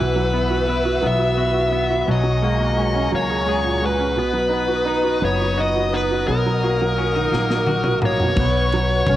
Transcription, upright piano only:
0, 0, Header, 1, 2, 480
1, 0, Start_track
1, 0, Key_signature, 5, "major"
1, 0, Tempo, 699464
1, 1423, Time_signature, 6, 3, 24, 8
1, 6289, End_track
2, 0, Start_track
2, 0, Title_t, "Upright piano"
2, 0, Program_c, 0, 0
2, 0, Note_on_c, 0, 47, 47
2, 102, Control_c, 0, 64, 127
2, 109, Note_on_c, 0, 54, 41
2, 229, Note_on_c, 0, 59, 43
2, 345, Note_on_c, 0, 66, 44
2, 458, Note_off_c, 0, 59, 0
2, 468, Note_on_c, 0, 59, 42
2, 575, Note_off_c, 0, 66, 0
2, 585, Note_on_c, 0, 66, 44
2, 692, Note_off_c, 0, 54, 0
2, 702, Note_on_c, 0, 54, 47
2, 805, Note_off_c, 0, 66, 0
2, 815, Note_on_c, 0, 66, 38
2, 930, Note_off_c, 0, 59, 0
2, 941, Note_on_c, 0, 59, 42
2, 1049, Note_off_c, 0, 66, 0
2, 1060, Note_on_c, 0, 66, 39
2, 1164, Note_off_c, 0, 59, 0
2, 1174, Note_on_c, 0, 59, 39
2, 1296, Note_off_c, 0, 66, 0
2, 1306, Note_on_c, 0, 66, 41
2, 1401, Note_off_c, 0, 54, 0
2, 1403, Note_off_c, 0, 47, 0
2, 1411, Note_off_c, 0, 59, 0
2, 1421, Note_off_c, 0, 66, 0
2, 1425, Note_on_c, 0, 47, 47
2, 1432, Control_c, 0, 64, 0
2, 1534, Note_on_c, 0, 54, 39
2, 1543, Control_c, 0, 64, 127
2, 1662, Note_on_c, 0, 56, 44
2, 1785, Note_on_c, 0, 58, 40
2, 1887, Note_off_c, 0, 56, 0
2, 1897, Note_on_c, 0, 56, 42
2, 2027, Note_on_c, 0, 61, 47
2, 2132, Note_off_c, 0, 54, 0
2, 2142, Note_on_c, 0, 54, 50
2, 2265, Note_on_c, 0, 68, 38
2, 2366, Note_off_c, 0, 56, 0
2, 2376, Note_on_c, 0, 56, 41
2, 2497, Note_on_c, 0, 46, 43
2, 2611, Note_off_c, 0, 56, 0
2, 2621, Note_on_c, 0, 56, 42
2, 2717, Note_off_c, 0, 58, 0
2, 2727, Note_off_c, 0, 61, 0
2, 2737, Note_on_c, 0, 61, 44
2, 2836, Note_off_c, 0, 47, 0
2, 2841, Note_off_c, 0, 54, 0
2, 2846, Note_off_c, 0, 68, 0
2, 2849, Note_off_c, 0, 46, 0
2, 2855, Note_off_c, 0, 56, 0
2, 2857, Note_off_c, 0, 61, 0
2, 2859, Note_on_c, 0, 47, 45
2, 2871, Control_c, 0, 64, 0
2, 2974, Note_on_c, 0, 54, 39
2, 2987, Control_c, 0, 64, 127
2, 3082, Note_on_c, 0, 63, 40
2, 3213, Note_on_c, 0, 66, 41
2, 3318, Note_off_c, 0, 63, 0
2, 3328, Note_on_c, 0, 63, 46
2, 3443, Note_off_c, 0, 66, 0
2, 3453, Note_on_c, 0, 66, 47
2, 3569, Note_off_c, 0, 54, 0
2, 3579, Note_on_c, 0, 54, 51
2, 3699, Note_off_c, 0, 66, 0
2, 3710, Note_on_c, 0, 66, 42
2, 3819, Note_off_c, 0, 63, 0
2, 3829, Note_on_c, 0, 63, 41
2, 3942, Note_off_c, 0, 66, 0
2, 3953, Note_on_c, 0, 66, 43
2, 4056, Note_off_c, 0, 63, 0
2, 4066, Note_on_c, 0, 63, 39
2, 4182, Note_off_c, 0, 66, 0
2, 4193, Note_on_c, 0, 66, 43
2, 4273, Note_off_c, 0, 47, 0
2, 4279, Note_off_c, 0, 54, 0
2, 4298, Note_off_c, 0, 63, 0
2, 4304, Note_off_c, 0, 66, 0
2, 4310, Note_on_c, 0, 59, 45
2, 4313, Control_c, 0, 64, 0
2, 4418, Control_c, 0, 64, 127
2, 4435, Note_on_c, 0, 54, 41
2, 4556, Note_on_c, 0, 66, 45
2, 4667, Note_off_c, 0, 54, 0
2, 4677, Note_on_c, 0, 54, 42
2, 4791, Note_off_c, 0, 66, 0
2, 4801, Note_on_c, 0, 66, 44
2, 4913, Note_on_c, 0, 51, 49
2, 5025, Note_off_c, 0, 54, 0
2, 5035, Note_on_c, 0, 54, 46
2, 5149, Note_off_c, 0, 66, 0
2, 5160, Note_on_c, 0, 66, 41
2, 5269, Note_off_c, 0, 54, 0
2, 5279, Note_on_c, 0, 54, 42
2, 5393, Note_off_c, 0, 66, 0
2, 5403, Note_on_c, 0, 66, 39
2, 5508, Note_off_c, 0, 54, 0
2, 5518, Note_on_c, 0, 54, 43
2, 5643, Note_on_c, 0, 47, 42
2, 5719, Note_off_c, 0, 59, 0
2, 5723, Note_off_c, 0, 51, 0
2, 5743, Note_off_c, 0, 66, 0
2, 5744, Note_off_c, 0, 54, 0
2, 5750, Note_off_c, 0, 47, 0
2, 5753, Control_c, 0, 64, 0
2, 5759, Note_on_c, 0, 59, 59
2, 5888, Control_c, 0, 64, 127
2, 5995, Note_on_c, 0, 54, 51
2, 6241, Note_on_c, 0, 61, 55
2, 6289, Note_off_c, 0, 54, 0
2, 6289, Note_off_c, 0, 59, 0
2, 6289, Note_off_c, 0, 61, 0
2, 6289, End_track
0, 0, End_of_file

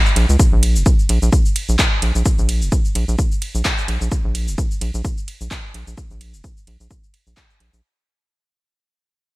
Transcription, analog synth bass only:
0, 0, Header, 1, 2, 480
1, 0, Start_track
1, 0, Key_signature, -5, "minor"
1, 0, Tempo, 465116
1, 408, Time_signature, 4, 2, 24, 8
1, 9658, End_track
2, 0, Start_track
2, 0, Title_t, "Analog synth bass"
2, 0, Program_c, 0, 38
2, 167, Note_on_c, 0, 34, 107
2, 267, Note_off_c, 0, 34, 0
2, 303, Note_on_c, 0, 37, 91
2, 381, Note_off_c, 0, 37, 0
2, 542, Note_on_c, 0, 34, 109
2, 784, Note_on_c, 0, 29, 86
2, 799, Note_off_c, 0, 34, 0
2, 861, Note_off_c, 0, 29, 0
2, 1128, Note_on_c, 0, 34, 94
2, 1228, Note_off_c, 0, 34, 0
2, 1262, Note_on_c, 0, 34, 105
2, 1340, Note_off_c, 0, 34, 0
2, 1743, Note_on_c, 0, 34, 85
2, 1821, Note_off_c, 0, 34, 0
2, 2088, Note_on_c, 0, 34, 86
2, 2188, Note_off_c, 0, 34, 0
2, 2222, Note_on_c, 0, 34, 99
2, 2300, Note_off_c, 0, 34, 0
2, 2462, Note_on_c, 0, 34, 107
2, 2702, Note_on_c, 0, 29, 81
2, 2717, Note_off_c, 0, 34, 0
2, 2780, Note_off_c, 0, 29, 0
2, 3047, Note_on_c, 0, 34, 93
2, 3147, Note_off_c, 0, 34, 0
2, 3182, Note_on_c, 0, 34, 107
2, 3260, Note_off_c, 0, 34, 0
2, 3661, Note_on_c, 0, 34, 88
2, 3740, Note_off_c, 0, 34, 0
2, 4007, Note_on_c, 0, 34, 86
2, 4107, Note_off_c, 0, 34, 0
2, 4141, Note_on_c, 0, 34, 104
2, 4220, Note_off_c, 0, 34, 0
2, 4381, Note_on_c, 0, 34, 105
2, 4620, Note_on_c, 0, 29, 79
2, 4635, Note_off_c, 0, 34, 0
2, 4699, Note_off_c, 0, 29, 0
2, 4966, Note_on_c, 0, 34, 91
2, 5067, Note_off_c, 0, 34, 0
2, 5102, Note_on_c, 0, 34, 106
2, 5180, Note_off_c, 0, 34, 0
2, 5582, Note_on_c, 0, 34, 82
2, 5660, Note_off_c, 0, 34, 0
2, 5927, Note_on_c, 0, 34, 87
2, 6028, Note_off_c, 0, 34, 0
2, 6061, Note_on_c, 0, 34, 101
2, 6140, Note_off_c, 0, 34, 0
2, 6301, Note_on_c, 0, 34, 104
2, 6542, Note_on_c, 0, 29, 81
2, 6557, Note_off_c, 0, 34, 0
2, 6620, Note_off_c, 0, 29, 0
2, 6887, Note_on_c, 0, 34, 91
2, 6987, Note_off_c, 0, 34, 0
2, 7021, Note_on_c, 0, 34, 102
2, 7100, Note_off_c, 0, 34, 0
2, 7501, Note_on_c, 0, 34, 85
2, 7580, Note_off_c, 0, 34, 0
2, 7846, Note_on_c, 0, 34, 88
2, 7947, Note_off_c, 0, 34, 0
2, 7983, Note_on_c, 0, 34, 103
2, 8061, Note_off_c, 0, 34, 0
2, 9658, End_track
0, 0, End_of_file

